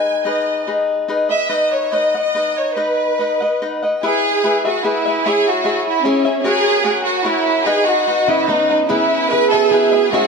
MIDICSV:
0, 0, Header, 1, 5, 480
1, 0, Start_track
1, 0, Key_signature, 5, "major"
1, 0, Tempo, 420168
1, 289, Time_signature, 3, 2, 24, 8
1, 4610, Tempo, 403497
1, 4612, Key_signature, 4, "major"
1, 8930, Tempo, 410678
1, 11973, End_track
2, 0, Start_track
2, 0, Title_t, "Cavaquinho"
2, 0, Program_c, 0, 24
2, 0, Note_on_c, 0, 63, 45
2, 0, Note_on_c, 0, 68, 42
2, 0, Note_on_c, 0, 71, 42
2, 0, Note_on_c, 0, 75, 46
2, 277, Note_off_c, 0, 68, 0
2, 280, Note_off_c, 0, 63, 0
2, 284, Note_on_c, 0, 63, 51
2, 291, Note_on_c, 0, 68, 56
2, 298, Note_off_c, 0, 71, 0
2, 299, Note_off_c, 0, 75, 0
2, 302, Note_on_c, 0, 71, 59
2, 304, Note_on_c, 0, 75, 58
2, 760, Note_off_c, 0, 68, 0
2, 761, Note_off_c, 0, 63, 0
2, 765, Note_on_c, 0, 63, 40
2, 772, Note_off_c, 0, 71, 0
2, 774, Note_on_c, 0, 68, 48
2, 776, Note_off_c, 0, 75, 0
2, 777, Note_on_c, 0, 71, 50
2, 780, Note_on_c, 0, 75, 47
2, 1233, Note_off_c, 0, 63, 0
2, 1233, Note_off_c, 0, 68, 0
2, 1238, Note_on_c, 0, 63, 47
2, 1246, Note_off_c, 0, 71, 0
2, 1247, Note_on_c, 0, 68, 48
2, 1250, Note_on_c, 0, 71, 57
2, 1254, Note_off_c, 0, 75, 0
2, 1259, Note_on_c, 0, 75, 49
2, 1460, Note_off_c, 0, 75, 0
2, 1473, Note_on_c, 0, 75, 36
2, 1475, Note_off_c, 0, 71, 0
2, 1476, Note_off_c, 0, 68, 0
2, 1481, Note_off_c, 0, 63, 0
2, 1489, Note_on_c, 0, 71, 34
2, 1490, Note_on_c, 0, 68, 28
2, 1694, Note_off_c, 0, 71, 0
2, 1701, Note_off_c, 0, 75, 0
2, 1703, Note_off_c, 0, 68, 0
2, 1707, Note_on_c, 0, 63, 50
2, 1707, Note_on_c, 0, 71, 48
2, 1714, Note_on_c, 0, 78, 59
2, 1715, Note_on_c, 0, 75, 54
2, 2183, Note_off_c, 0, 63, 0
2, 2191, Note_off_c, 0, 71, 0
2, 2192, Note_off_c, 0, 75, 0
2, 2192, Note_off_c, 0, 78, 0
2, 2196, Note_on_c, 0, 71, 44
2, 2197, Note_on_c, 0, 63, 51
2, 2207, Note_on_c, 0, 75, 54
2, 2211, Note_on_c, 0, 78, 47
2, 2437, Note_off_c, 0, 71, 0
2, 2437, Note_off_c, 0, 78, 0
2, 2438, Note_off_c, 0, 63, 0
2, 2442, Note_off_c, 0, 75, 0
2, 2450, Note_on_c, 0, 78, 38
2, 2455, Note_on_c, 0, 75, 33
2, 2469, Note_on_c, 0, 71, 30
2, 2676, Note_off_c, 0, 71, 0
2, 2680, Note_off_c, 0, 78, 0
2, 2680, Note_on_c, 0, 63, 47
2, 2682, Note_off_c, 0, 75, 0
2, 2690, Note_on_c, 0, 71, 44
2, 2699, Note_on_c, 0, 75, 44
2, 2704, Note_on_c, 0, 78, 52
2, 3143, Note_off_c, 0, 63, 0
2, 3154, Note_off_c, 0, 75, 0
2, 3155, Note_off_c, 0, 71, 0
2, 3156, Note_off_c, 0, 78, 0
2, 3157, Note_on_c, 0, 63, 51
2, 3159, Note_on_c, 0, 71, 45
2, 3167, Note_on_c, 0, 75, 58
2, 3170, Note_on_c, 0, 78, 54
2, 3632, Note_off_c, 0, 63, 0
2, 3646, Note_on_c, 0, 63, 38
2, 3647, Note_off_c, 0, 75, 0
2, 3648, Note_off_c, 0, 71, 0
2, 3648, Note_off_c, 0, 78, 0
2, 3653, Note_on_c, 0, 71, 42
2, 3661, Note_on_c, 0, 75, 40
2, 3668, Note_on_c, 0, 78, 46
2, 3876, Note_off_c, 0, 78, 0
2, 3889, Note_on_c, 0, 78, 44
2, 3890, Note_off_c, 0, 75, 0
2, 3892, Note_off_c, 0, 63, 0
2, 3895, Note_off_c, 0, 71, 0
2, 3904, Note_on_c, 0, 75, 34
2, 3910, Note_on_c, 0, 71, 32
2, 4120, Note_off_c, 0, 71, 0
2, 4123, Note_off_c, 0, 75, 0
2, 4132, Note_off_c, 0, 78, 0
2, 4133, Note_on_c, 0, 71, 48
2, 4134, Note_on_c, 0, 63, 48
2, 4136, Note_on_c, 0, 75, 45
2, 4147, Note_on_c, 0, 78, 48
2, 4355, Note_off_c, 0, 78, 0
2, 4365, Note_off_c, 0, 75, 0
2, 4369, Note_on_c, 0, 78, 34
2, 4375, Note_off_c, 0, 71, 0
2, 4379, Note_on_c, 0, 75, 34
2, 4380, Note_off_c, 0, 63, 0
2, 4389, Note_on_c, 0, 71, 27
2, 4599, Note_off_c, 0, 71, 0
2, 4605, Note_on_c, 0, 64, 62
2, 4608, Note_off_c, 0, 75, 0
2, 4608, Note_off_c, 0, 78, 0
2, 4613, Note_on_c, 0, 71, 64
2, 4616, Note_on_c, 0, 68, 56
2, 4619, Note_on_c, 0, 76, 56
2, 5086, Note_off_c, 0, 64, 0
2, 5086, Note_off_c, 0, 71, 0
2, 5091, Note_on_c, 0, 64, 54
2, 5092, Note_off_c, 0, 68, 0
2, 5097, Note_on_c, 0, 68, 56
2, 5100, Note_on_c, 0, 71, 51
2, 5109, Note_off_c, 0, 76, 0
2, 5114, Note_on_c, 0, 76, 61
2, 5325, Note_off_c, 0, 76, 0
2, 5328, Note_off_c, 0, 71, 0
2, 5339, Note_on_c, 0, 76, 42
2, 5342, Note_on_c, 0, 71, 36
2, 5343, Note_off_c, 0, 64, 0
2, 5343, Note_off_c, 0, 68, 0
2, 5357, Note_on_c, 0, 68, 34
2, 5558, Note_off_c, 0, 68, 0
2, 5568, Note_off_c, 0, 71, 0
2, 5572, Note_on_c, 0, 64, 47
2, 5573, Note_off_c, 0, 76, 0
2, 5573, Note_on_c, 0, 68, 55
2, 5582, Note_on_c, 0, 71, 54
2, 5587, Note_on_c, 0, 76, 50
2, 5809, Note_off_c, 0, 76, 0
2, 5823, Note_off_c, 0, 64, 0
2, 5823, Note_off_c, 0, 68, 0
2, 5823, Note_off_c, 0, 71, 0
2, 5823, Note_on_c, 0, 76, 42
2, 5838, Note_on_c, 0, 71, 35
2, 5849, Note_on_c, 0, 68, 40
2, 6056, Note_off_c, 0, 68, 0
2, 6061, Note_off_c, 0, 76, 0
2, 6064, Note_on_c, 0, 64, 72
2, 6068, Note_off_c, 0, 71, 0
2, 6070, Note_on_c, 0, 68, 63
2, 6075, Note_on_c, 0, 73, 63
2, 6082, Note_on_c, 0, 76, 72
2, 6505, Note_off_c, 0, 64, 0
2, 6515, Note_off_c, 0, 68, 0
2, 6520, Note_on_c, 0, 64, 50
2, 6523, Note_off_c, 0, 76, 0
2, 6527, Note_off_c, 0, 73, 0
2, 6529, Note_on_c, 0, 68, 55
2, 6531, Note_on_c, 0, 73, 59
2, 6537, Note_on_c, 0, 76, 53
2, 6993, Note_off_c, 0, 64, 0
2, 6994, Note_off_c, 0, 68, 0
2, 7004, Note_off_c, 0, 73, 0
2, 7007, Note_on_c, 0, 64, 61
2, 7008, Note_off_c, 0, 76, 0
2, 7008, Note_on_c, 0, 68, 60
2, 7018, Note_on_c, 0, 73, 59
2, 7022, Note_on_c, 0, 76, 59
2, 7228, Note_off_c, 0, 76, 0
2, 7241, Note_off_c, 0, 73, 0
2, 7242, Note_on_c, 0, 76, 43
2, 7252, Note_off_c, 0, 68, 0
2, 7254, Note_off_c, 0, 64, 0
2, 7255, Note_on_c, 0, 73, 39
2, 7266, Note_on_c, 0, 68, 37
2, 7474, Note_on_c, 0, 66, 60
2, 7478, Note_off_c, 0, 68, 0
2, 7479, Note_off_c, 0, 73, 0
2, 7483, Note_on_c, 0, 70, 72
2, 7485, Note_off_c, 0, 76, 0
2, 7493, Note_on_c, 0, 73, 76
2, 7495, Note_on_c, 0, 78, 74
2, 7938, Note_off_c, 0, 66, 0
2, 7939, Note_off_c, 0, 70, 0
2, 7943, Note_on_c, 0, 66, 53
2, 7944, Note_off_c, 0, 73, 0
2, 7954, Note_on_c, 0, 70, 56
2, 7959, Note_on_c, 0, 73, 57
2, 7965, Note_off_c, 0, 78, 0
2, 7970, Note_on_c, 0, 78, 64
2, 8412, Note_off_c, 0, 66, 0
2, 8417, Note_off_c, 0, 70, 0
2, 8426, Note_on_c, 0, 66, 61
2, 8427, Note_off_c, 0, 73, 0
2, 8432, Note_off_c, 0, 78, 0
2, 8432, Note_on_c, 0, 70, 61
2, 8441, Note_on_c, 0, 73, 66
2, 8446, Note_on_c, 0, 78, 62
2, 8914, Note_off_c, 0, 78, 0
2, 8916, Note_off_c, 0, 66, 0
2, 8919, Note_off_c, 0, 70, 0
2, 8920, Note_on_c, 0, 63, 57
2, 8924, Note_off_c, 0, 73, 0
2, 8924, Note_on_c, 0, 71, 75
2, 8928, Note_on_c, 0, 75, 67
2, 8929, Note_on_c, 0, 78, 72
2, 9386, Note_off_c, 0, 63, 0
2, 9397, Note_off_c, 0, 75, 0
2, 9400, Note_on_c, 0, 63, 54
2, 9406, Note_off_c, 0, 78, 0
2, 9408, Note_off_c, 0, 71, 0
2, 9411, Note_on_c, 0, 75, 55
2, 9413, Note_on_c, 0, 71, 52
2, 9426, Note_on_c, 0, 78, 63
2, 9630, Note_off_c, 0, 78, 0
2, 9642, Note_off_c, 0, 75, 0
2, 9644, Note_on_c, 0, 78, 43
2, 9649, Note_off_c, 0, 63, 0
2, 9649, Note_off_c, 0, 71, 0
2, 9656, Note_on_c, 0, 75, 41
2, 9663, Note_on_c, 0, 71, 37
2, 9876, Note_off_c, 0, 71, 0
2, 9880, Note_on_c, 0, 63, 56
2, 9883, Note_off_c, 0, 75, 0
2, 9886, Note_off_c, 0, 78, 0
2, 9890, Note_on_c, 0, 71, 57
2, 9897, Note_on_c, 0, 75, 55
2, 9902, Note_on_c, 0, 78, 59
2, 10115, Note_off_c, 0, 78, 0
2, 10123, Note_off_c, 0, 75, 0
2, 10129, Note_on_c, 0, 78, 41
2, 10130, Note_off_c, 0, 63, 0
2, 10133, Note_off_c, 0, 71, 0
2, 10137, Note_on_c, 0, 75, 36
2, 10147, Note_on_c, 0, 71, 38
2, 10353, Note_off_c, 0, 71, 0
2, 10358, Note_on_c, 0, 64, 64
2, 10362, Note_off_c, 0, 75, 0
2, 10362, Note_on_c, 0, 68, 60
2, 10363, Note_off_c, 0, 78, 0
2, 10367, Note_on_c, 0, 71, 72
2, 10368, Note_on_c, 0, 76, 66
2, 10839, Note_off_c, 0, 64, 0
2, 10841, Note_off_c, 0, 71, 0
2, 10842, Note_off_c, 0, 68, 0
2, 10844, Note_on_c, 0, 64, 58
2, 10847, Note_on_c, 0, 68, 50
2, 10855, Note_on_c, 0, 71, 54
2, 10863, Note_off_c, 0, 76, 0
2, 10868, Note_on_c, 0, 76, 51
2, 11082, Note_off_c, 0, 76, 0
2, 11087, Note_off_c, 0, 71, 0
2, 11091, Note_off_c, 0, 64, 0
2, 11093, Note_off_c, 0, 68, 0
2, 11096, Note_on_c, 0, 76, 44
2, 11101, Note_on_c, 0, 71, 38
2, 11115, Note_on_c, 0, 68, 35
2, 11322, Note_off_c, 0, 68, 0
2, 11333, Note_off_c, 0, 71, 0
2, 11333, Note_off_c, 0, 76, 0
2, 11336, Note_on_c, 0, 68, 57
2, 11338, Note_on_c, 0, 64, 47
2, 11347, Note_on_c, 0, 71, 59
2, 11349, Note_on_c, 0, 76, 61
2, 11549, Note_off_c, 0, 76, 0
2, 11560, Note_off_c, 0, 71, 0
2, 11563, Note_on_c, 0, 76, 45
2, 11574, Note_on_c, 0, 71, 40
2, 11578, Note_off_c, 0, 68, 0
2, 11579, Note_off_c, 0, 64, 0
2, 11590, Note_on_c, 0, 68, 36
2, 11804, Note_off_c, 0, 68, 0
2, 11805, Note_off_c, 0, 76, 0
2, 11808, Note_on_c, 0, 64, 74
2, 11811, Note_off_c, 0, 71, 0
2, 11818, Note_on_c, 0, 68, 73
2, 11820, Note_on_c, 0, 73, 67
2, 11822, Note_on_c, 0, 76, 82
2, 11973, Note_off_c, 0, 64, 0
2, 11973, Note_off_c, 0, 68, 0
2, 11973, Note_off_c, 0, 73, 0
2, 11973, Note_off_c, 0, 76, 0
2, 11973, End_track
3, 0, Start_track
3, 0, Title_t, "Violin section"
3, 0, Program_c, 1, 48
3, 0, Note_on_c, 1, 80, 58
3, 258, Note_off_c, 1, 80, 0
3, 306, Note_on_c, 1, 75, 54
3, 775, Note_off_c, 1, 75, 0
3, 1486, Note_on_c, 1, 76, 83
3, 1702, Note_off_c, 1, 76, 0
3, 1723, Note_on_c, 1, 75, 71
3, 1962, Note_off_c, 1, 75, 0
3, 1962, Note_on_c, 1, 73, 66
3, 2195, Note_off_c, 1, 73, 0
3, 2204, Note_on_c, 1, 75, 72
3, 2500, Note_off_c, 1, 75, 0
3, 2514, Note_on_c, 1, 75, 79
3, 2890, Note_off_c, 1, 75, 0
3, 2926, Note_on_c, 1, 73, 67
3, 3159, Note_off_c, 1, 73, 0
3, 3161, Note_on_c, 1, 71, 66
3, 4134, Note_off_c, 1, 71, 0
3, 4609, Note_on_c, 1, 68, 86
3, 5298, Note_off_c, 1, 68, 0
3, 5353, Note_on_c, 1, 66, 75
3, 5580, Note_on_c, 1, 64, 77
3, 5589, Note_off_c, 1, 66, 0
3, 6061, Note_off_c, 1, 64, 0
3, 6061, Note_on_c, 1, 68, 85
3, 6297, Note_on_c, 1, 66, 77
3, 6304, Note_off_c, 1, 68, 0
3, 6779, Note_off_c, 1, 66, 0
3, 6790, Note_on_c, 1, 64, 78
3, 6994, Note_on_c, 1, 61, 85
3, 7006, Note_off_c, 1, 64, 0
3, 7365, Note_off_c, 1, 61, 0
3, 7445, Note_on_c, 1, 68, 105
3, 8143, Note_off_c, 1, 68, 0
3, 8190, Note_on_c, 1, 66, 84
3, 8422, Note_off_c, 1, 66, 0
3, 8427, Note_on_c, 1, 64, 87
3, 8908, Note_on_c, 1, 68, 94
3, 8919, Note_off_c, 1, 64, 0
3, 9145, Note_on_c, 1, 66, 87
3, 9160, Note_off_c, 1, 68, 0
3, 9632, Note_on_c, 1, 64, 89
3, 9639, Note_off_c, 1, 66, 0
3, 9871, Note_on_c, 1, 63, 82
3, 9880, Note_off_c, 1, 64, 0
3, 10244, Note_off_c, 1, 63, 0
3, 10334, Note_on_c, 1, 64, 87
3, 10798, Note_off_c, 1, 64, 0
3, 10817, Note_on_c, 1, 71, 107
3, 11071, Note_on_c, 1, 69, 95
3, 11078, Note_off_c, 1, 71, 0
3, 11302, Note_off_c, 1, 69, 0
3, 11311, Note_on_c, 1, 68, 85
3, 11796, Note_on_c, 1, 66, 99
3, 11801, Note_off_c, 1, 68, 0
3, 11973, Note_off_c, 1, 66, 0
3, 11973, End_track
4, 0, Start_track
4, 0, Title_t, "Violin section"
4, 0, Program_c, 2, 48
4, 10370, Note_on_c, 2, 76, 64
4, 10372, Note_on_c, 2, 68, 48
4, 10374, Note_on_c, 2, 59, 58
4, 11796, Note_off_c, 2, 76, 0
4, 11797, Note_off_c, 2, 68, 0
4, 11798, Note_off_c, 2, 59, 0
4, 11812, Note_on_c, 2, 64, 57
4, 11817, Note_on_c, 2, 73, 73
4, 11818, Note_on_c, 2, 56, 68
4, 11973, Note_off_c, 2, 56, 0
4, 11973, Note_off_c, 2, 64, 0
4, 11973, Note_off_c, 2, 73, 0
4, 11973, End_track
5, 0, Start_track
5, 0, Title_t, "Harp"
5, 0, Program_c, 3, 46
5, 9640, Note_on_c, 3, 61, 78
5, 9880, Note_on_c, 3, 59, 63
5, 10364, Note_off_c, 3, 59, 0
5, 10369, Note_on_c, 3, 59, 71
5, 10866, Note_on_c, 3, 68, 73
5, 11111, Note_on_c, 3, 66, 79
5, 11311, Note_on_c, 3, 64, 80
5, 11798, Note_off_c, 3, 61, 0
5, 11802, Note_on_c, 3, 61, 79
5, 11973, Note_off_c, 3, 59, 0
5, 11973, Note_off_c, 3, 61, 0
5, 11973, Note_off_c, 3, 64, 0
5, 11973, Note_off_c, 3, 66, 0
5, 11973, Note_off_c, 3, 68, 0
5, 11973, End_track
0, 0, End_of_file